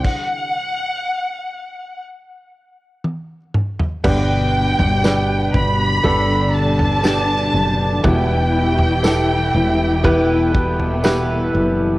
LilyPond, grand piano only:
<<
  \new Staff \with { instrumentName = "Grand piano" } { \time 4/4 \key g \major \tempo 4 = 60 r1 | <b d' g' b'>4 <b d' g' b'>4 <b d' g' a'>4 <b d' g' d''>4 | <b e' g' b'>4 <b e' g' a'>4 <b e' g' b'>4 <b e' g' b'>4 | }
  \new Staff \with { instrumentName = "Grand piano" } { \clef bass \time 4/4 \key g \major r1 | <g, d>4. r2 r8 | b,4. r2 r8 | }
>>